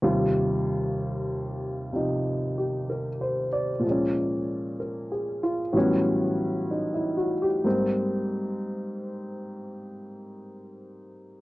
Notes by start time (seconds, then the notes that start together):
0.02 D#2 C3 G3 F4
1.93 C3 F3 D#4
2.58 G4
2.90 A#4
3.21 C5
3.53 D5
3.79 A#2 F3
3.87 G#3 C#4
4.80 A#4
5.12 G#4
5.43 F4
5.72 A2 E3 F#3 G3
5.77 B3 C#4
6.71 D#4
6.94 E4
7.17 F#4
7.42 G4
7.64 G#2 G3 A#3 C4